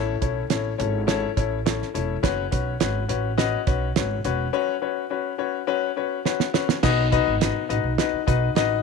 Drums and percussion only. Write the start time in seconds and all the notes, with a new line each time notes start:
0.22 kick, closed hi-hat
0.50 snare, closed hi-hat
0.80 closed hi-hat
1.08 snare, closed hi-hat
1.37 kick, closed hi-hat
1.66 snare, closed hi-hat
1.82 snare
1.95 closed hi-hat
2.24 kick, snare, closed hi-hat
2.52 kick, closed hi-hat
2.80 snare, closed hi-hat
3.09 closed hi-hat
3.38 snare, closed hi-hat
3.67 kick, closed hi-hat
3.96 snare, closed hi-hat
4.24 closed hi-hat
6.26 snare
6.40 snare
6.54 snare
6.69 snare
6.83 kick, snare, crash
7.12 kick, closed hi-hat
7.41 snare, closed hi-hat
7.70 closed hi-hat
7.98 snare, closed hi-hat
8.28 kick, closed hi-hat
8.56 snare, closed hi-hat